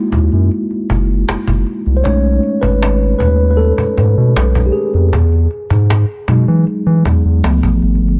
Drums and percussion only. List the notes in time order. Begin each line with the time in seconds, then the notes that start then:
0.12 cajon bass
0.32 cajon slap
0.51 cajon slap
0.71 cajon slap
0.90 cajon bass
1.29 cajon slap
1.48 cajon bass
1.66 cajon slap
1.86 cajon slap
2.05 cajon bass
2.25 cajon slap
2.43 cajon slap
2.63 cajon bass
2.82 cajon slap
3.20 cajon bass
3.40 cajon slap
3.59 cajon slap
3.78 cajon bass
3.98 cajon bass
4.36 cajon slap
4.55 cajon bass
4.74 cajon slap
4.94 cajon slap
5.13 cajon bass
5.32 cajon slap
5.51 cajon slap
5.70 cajon bass
5.90 cajon slap
6.28 cajon bass
6.48 cajon slap
6.67 cajon slap
6.86 cajon slap
7.05 cajon bass
7.44 cajon slap
7.63 cajon bass
7.82 cajon slap
7.95 cajon slap
8.08 cajon slap